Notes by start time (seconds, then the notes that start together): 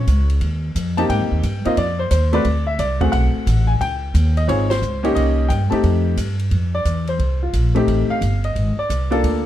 Already playing: C#5
0.07 C#2, kick, hi-hat pedal, ride
0.30 ride
0.41 D#2, kick, ride
0.75 F2, kick, hi-hat pedal, ride
0.97 A#3 C4 D#4 G4 A5, ride
1.09 G#2 G5, kick, ride
1.20 F2
1.31 D#2
1.43 G2, kick, hi-hat pedal, ride
1.65 A#3 C4 D#4 F4 D#5, muted upright bass stroke, ride
1.77 F2 D5, kick, ride
1.99 C5
2.11 D#2 C5, kick, hi-hat pedal, ride
2.33 A3 C4 F#4 B4 D5, ride
2.45 D2, kick, ride
2.67 E5
2.79 C2 D5, kick, hi-hat pedal, ride
3.01 A3 C4 F#4 G#4 F#5, kick, ride
3.12 B1 F#5, kick, ride
3.34 muted upright bass stroke
3.46 A1, kick, hi-hat pedal, ride
3.67 G#5
3.81 C#2 G5, kick, ride
4.14 D#2, kick, hi-hat pedal, ride
4.37 D#5, ride
4.48 G#1 C4 D#4 F4 G#4 C#5, kick, ride
4.70 C5, snare, ride
4.82 C#2, hi-hat pedal
5.03 A#3 C#4 D#4 G4, ride
5.15 C2 D#5, kick, ride
5.49 G2 G5, kick, hi-hat pedal, ride
5.70 A3 C4 D#4 G4 A5, muted upright bass stroke, ride
5.83 F2, kick, ride
6.17 G2, kick, hi-hat pedal, ride
6.39 ride
6.51 F2, kick, ride
6.75 D5
6.85 E2, kick, hi-hat pedal, ride
7.07 C5, ride
7.19 C2, kick, ride
7.43 F4
7.53 A#1, kick, hi-hat pedal, ride
7.75 A3 C4 D#4 G4, ride
7.87 A1, kick, ride
8.09 F5, muted upright bass stroke
8.21 G1, kick, hi-hat pedal, ride
8.44 D#5, ride
8.55 G#1, kick, ride
8.77 D5, muted upright bass stroke
8.90 C2, kick, hi-hat pedal, ride
9.10 A#3 D4 F4 A4, ride
9.23 D2, kick, ride